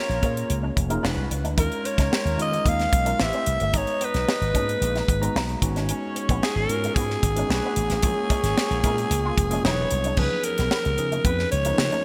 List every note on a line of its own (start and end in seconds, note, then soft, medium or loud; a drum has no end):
0.00 0.15 A#3 medium
0.00 0.74 A#3 medium
0.00 0.15 C#4 medium
0.00 0.75 C#4 medium
0.00 0.16 F4 medium
0.00 0.74 F4 medium
0.00 0.16 G#4 medium
0.00 0.74 A#4 medium
0.00 0.16 C#5 medium
0.00 0.78 C#5 medium
0.09 0.19 A#1 medium
0.09 closed hi-hat soft
0.22 0.42 A#2 medium
0.22 0.84 A#3 medium
0.22 0.34 A#3 medium
0.22 0.84 C#4 medium
0.22 0.84 F4 medium
0.22 0.84 G#4 medium
0.22 0.85 A#4 medium
0.22 kick medium
0.22 closed hi-hat medium
0.37 closed hi-hat soft
0.50 0.69 C#2 medium
0.50 closed hi-hat medium
0.63 0.73 C#4 medium
0.76 0.96 F1 medium
0.76 muted clean electric guitar stroke soft
0.76 kick medium
0.76 closed hi-hat medium
0.90 1.04 A#3 medium
0.90 1.04 C#4 medium
0.90 1.00 D#4 medium
0.90 1.04 F4 medium
0.90 1.04 G#4 medium
0.90 1.04 A#4 medium
0.90 closed hi-hat soft
1.03 1.14 E1 medium
1.03 1.53 G#3 medium
1.03 1.30 B3 medium
1.03 1.14 D4 medium
1.03 1.53 D4 medium
1.03 1.53 E4 medium
1.03 1.30 F#4 medium
1.03 1.53 F#4 medium
1.03 1.30 G#4 medium
1.03 1.30 B4 medium
1.03 1.53 B4 medium
1.03 snare loud
1.16 1.26 C2 medium
1.30 1.44 C#2 medium
1.30 muted clean electric guitar stroke soft
1.30 closed hi-hat medium
1.44 1.54 D2 medium
1.44 1.54 D4 medium
1.44 closed hi-hat soft
1.57 1.67 D#2 medium
1.57 2.31 G#3 medium
1.57 2.90 A#3 medium
1.57 2.31 C#4 medium
1.57 2.90 C#4 medium
1.57 2.31 D#4 medium
1.57 1.68 D#4 medium
1.57 2.31 F4 medium
1.57 2.90 F4 medium
1.57 2.31 A#4 medium
1.57 2.90 A#4 medium
1.57 1.87 A#4 medium
1.57 kick loud
1.57 closed hi-hat medium
1.72 closed hi-hat soft
1.84 2.39 C#5 medium
1.84 muted clean electric guitar stroke soft
1.84 closed hi-hat medium
1.98 2.08 C#2 medium
1.98 2.08 C#4 medium
1.98 kick medium
1.98 snare soft
1.98 closed hi-hat soft
2.12 2.22 A#3 medium
2.12 snare loud
2.25 2.35 D#2 medium
2.25 muted clean electric guitar stroke soft
2.25 closed hi-hat soft
2.37 2.57 D#3 medium
2.37 2.99 G#3 medium
2.37 2.99 C#4 medium
2.37 2.99 D#4 medium
2.37 3.00 F4 medium
2.37 3.00 A#4 medium
2.37 closed hi-hat medium
2.42 2.70 D#5 medium
2.52 2.62 G#3 medium
2.52 closed hi-hat soft
2.65 2.85 D#2 medium
2.65 2.75 A#3 medium
2.65 3.25 F5 loud
2.65 kick medium
2.65 closed hi-hat medium
2.80 snare soft
2.80 closed hi-hat soft
2.92 3.12 B1 medium
2.92 muted clean electric guitar stroke soft
2.92 kick medium
2.92 closed hi-hat medium
3.05 3.19 G#3 medium
3.05 3.19 C#4 medium
3.05 3.16 C#4 medium
3.05 3.19 D#4 medium
3.05 3.19 F4 medium
3.05 3.19 A#4 medium
3.05 closed hi-hat soft
3.18 3.30 A1 medium
3.18 3.68 A3 medium
3.18 3.25 B3 medium
3.18 3.46 C4 medium
3.18 3.68 E4 medium
3.18 3.46 E4 medium
3.18 3.68 G4 medium
3.18 3.46 G4 medium
3.18 3.68 B4 medium
3.18 3.46 C5 medium
3.18 snare loud
3.23 3.71 C4 medium
3.23 3.79 E5 medium
3.33 3.43 C4 medium
3.33 closed hi-hat soft
3.46 3.56 C2 medium
3.46 muted clean electric guitar stroke soft
3.46 closed hi-hat medium
3.60 3.70 G1 medium
3.60 3.71 A3 medium
3.60 closed hi-hat soft
3.73 3.83 G#1 loud
3.73 4.46 G#3 medium
3.73 3.84 G#3 medium
3.73 4.47 B3 medium
3.73 5.31 D#4 medium
3.73 4.47 D#4 medium
3.73 4.47 F#4 medium
3.73 5.31 B4 medium
3.73 5.31 D#5 medium
3.73 4.47 A#5 medium
3.73 kick loud
3.73 closed hi-hat medium
3.77 4.06 C#5 medium
3.87 muted clean electric guitar stroke soft
3.87 closed hi-hat soft
4.01 4.11 B3 medium
4.01 closed hi-hat medium
4.05 5.64 B4 medium
4.14 4.24 B1 medium
4.14 snare soft
4.14 closed hi-hat soft
4.29 snare loud
4.41 4.51 G#1 medium
4.41 closed hi-hat soft
4.53 4.74 G#2 medium
4.53 5.15 G#3 medium
4.53 4.60 A#3 soft
4.53 4.64 C#4 medium
4.53 5.15 D#4 medium
4.53 5.15 F#4 medium
4.53 5.15 G#4 medium
4.53 kick medium
4.53 closed hi-hat medium
4.60 5.18 B3 medium
4.69 closed hi-hat soft
4.81 5.00 A#1 medium
4.81 closed hi-hat medium
4.95 5.05 D#4 medium
4.95 snare soft
4.95 closed hi-hat soft
5.08 5.27 G#1 medium
5.08 muted clean electric guitar stroke soft
5.08 kick medium
5.08 closed hi-hat medium
5.21 5.60 G#3 medium
5.21 5.61 B3 medium
5.21 5.32 B3 medium
5.21 5.61 D#4 medium
5.21 5.61 F#4 medium
5.21 5.62 A#5 medium
5.21 closed hi-hat soft
5.35 5.54 B1 medium
5.35 5.46 D#4 medium
5.35 snare loud
5.49 closed hi-hat soft
5.61 5.91 G#1 medium
5.61 6.59 G#3 medium
5.61 6.59 B3 medium
5.61 6.60 C#4 medium
5.61 7.20 C#4 medium
5.61 6.60 D#4 medium
5.61 7.20 F#4 medium
5.61 6.60 F#4 medium
5.61 7.20 G#4 medium
5.61 7.20 C#5 medium
5.61 muted clean electric guitar stroke soft
5.61 kick medium
5.61 closed hi-hat medium
5.76 5.86 C#4 medium
5.76 snare soft
5.76 closed hi-hat soft
5.89 5.99 C#4 medium
5.89 closed hi-hat medium
6.15 muted clean electric guitar stroke soft
6.15 closed hi-hat medium
6.29 6.39 A#1 medium
6.29 6.39 B3 medium
6.29 kick medium
6.29 closed hi-hat soft
6.42 6.52 G#3 medium
6.42 6.58 G#4 medium
6.42 snare loud
6.56 6.65 G#1 medium
6.56 6.96 A#4 loud
6.56 muted clean electric guitar stroke soft
6.68 6.88 G#2 medium
6.68 7.30 G#3 medium
6.68 7.30 B3 medium
6.68 7.30 C#4 medium
6.68 7.30 D#4 medium
6.68 6.76 F4 medium
6.68 closed hi-hat medium
6.76 7.33 F#4 medium
6.84 6.94 G#3 medium
6.84 closed hi-hat soft
6.95 7.15 G#2 medium
6.95 7.07 B3 medium
6.95 9.64 G#4 medium
6.95 kick medium
6.95 closed hi-hat medium
7.10 snare soft
7.23 7.42 G#1 medium
7.23 muted clean electric guitar stroke soft
7.23 kick medium
7.23 closed hi-hat medium
7.35 7.49 G#3 medium
7.35 7.47 B3 medium
7.35 7.48 C#4 medium
7.35 7.47 C#4 medium
7.35 7.49 D#4 medium
7.35 7.48 F#4 medium
7.35 closed hi-hat soft
7.48 7.59 B1 medium
7.48 7.98 A3 medium
7.48 7.98 B3 medium
7.48 7.76 B3 medium
7.48 7.98 C#4 medium
7.48 7.98 D4 medium
7.48 7.76 D4 medium
7.48 7.98 F#4 medium
7.48 7.76 F#4 medium
7.48 7.76 B4 medium
7.48 snare loud
7.65 7.74 B3 medium
7.76 7.86 A1 loud
7.76 muted clean electric guitar stroke soft
7.76 closed hi-hat medium
7.90 7.99 A1 medium
7.90 8.01 A3 medium
7.90 snare soft
7.90 closed hi-hat soft
8.02 8.13 A#1 medium
8.02 8.76 G#3 medium
8.02 8.76 A#3 medium
8.02 8.14 A#3 medium
8.02 8.76 C#4 medium
8.02 9.35 C#4 medium
8.02 8.77 F4 medium
8.02 9.35 G#4 medium
8.02 8.77 G#4 medium
8.02 9.35 A#4 medium
8.02 9.35 C#5 medium
8.02 kick loud
8.02 closed hi-hat medium
8.18 muted clean electric guitar stroke soft
8.30 8.40 C#4 medium
8.30 kick medium
8.30 closed hi-hat medium
8.43 8.53 G#1 medium
8.43 snare soft
8.43 closed hi-hat soft
8.58 snare loud
8.71 8.80 A#1 medium
8.71 closed hi-hat soft
8.83 9.03 A#2 medium
8.83 9.44 G#3 medium
8.83 9.45 A#3 medium
8.83 8.90 B3 medium
8.83 8.95 D#4 medium
8.83 9.45 F4 medium
8.83 9.45 A#4 medium
8.83 kick medium
8.83 closed hi-hat medium
8.90 9.48 C#4 medium
8.98 closed hi-hat soft
9.10 9.30 C#2 medium
9.10 closed hi-hat medium
9.25 9.35 F4 medium
9.38 9.57 F1 medium
9.38 muted clean electric guitar stroke soft
9.38 kick medium
9.38 closed hi-hat medium
9.50 9.64 G#3 medium
9.50 9.64 A#3 medium
9.50 9.64 C#4 medium
9.50 9.62 C#4 medium
9.50 9.64 F4 medium
9.50 9.64 G#4 medium
9.50 closed hi-hat soft
9.63 9.84 E1 medium
9.63 10.13 F#3 medium
9.63 10.13 B3 medium
9.63 9.91 B3 medium
9.63 10.13 D4 medium
9.63 9.76 D#4 medium
9.63 10.13 E4 medium
9.63 9.91 F#4 medium
9.63 9.91 G#4 medium
9.63 10.14 G#4 medium
9.63 9.91 B4 medium
9.63 10.20 C#5 medium
9.63 snare loud
9.91 10.11 C2 medium
9.91 muted clean electric guitar stroke soft
9.91 closed hi-hat medium
10.04 10.15 D4 medium
10.04 closed hi-hat soft
10.17 10.27 C#2 medium
10.17 10.91 F3 medium
10.17 10.91 B3 medium
10.17 10.91 C#4 medium
10.17 10.28 C#4 medium
10.17 10.91 D#4 medium
10.17 10.91 G#4 medium
10.17 10.46 B4 medium
10.17 kick loud
10.17 crash medium
10.17 muted conga soft
10.17 low conga medium
10.32 high conga soft
10.44 11.26 A#4 medium
10.44 muted clean electric guitar stroke soft
10.44 closed hi-hat medium
10.58 10.68 B1 medium
10.58 10.69 B3 medium
10.58 snare soft
10.58 closed hi-hat soft
10.71 10.82 B3 medium
10.71 snare loud
10.85 10.95 C#2 medium
10.85 muted clean electric guitar stroke soft
10.85 closed hi-hat soft
10.85 muted conga soft
10.97 11.18 C#3 medium
10.97 11.59 F3 medium
10.97 11.59 B3 medium
10.97 11.59 C#4 medium
10.97 11.59 D#4 medium
10.97 11.60 G#4 medium
10.97 closed hi-hat medium
11.11 11.22 G#3 medium
11.11 closed hi-hat soft
11.11 high conga soft
11.25 11.44 F2 medium
11.25 11.35 B3 medium
11.25 11.51 B4 medium
11.25 kick loud
11.25 closed hi-hat medium
11.25 muted conga soft
11.39 snare soft
11.39 muted conga soft
11.51 11.72 C#2 medium
11.51 12.05 C#5 loud
11.51 muted clean electric guitar stroke soft
11.51 closed hi-hat medium
11.65 12.05 F3 medium
11.65 12.04 B3 medium
11.65 12.05 C#4 medium
11.65 11.75 D#4 medium
11.65 12.04 D#4 medium
11.65 12.05 A#4 medium
11.65 closed hi-hat medium
11.78 11.88 C#3 medium
11.78 snare loud
11.78 muted conga soft
11.78 high conga medium
11.92 12.02 C#4 medium
11.92 closed hi-hat soft
11.92 high conga medium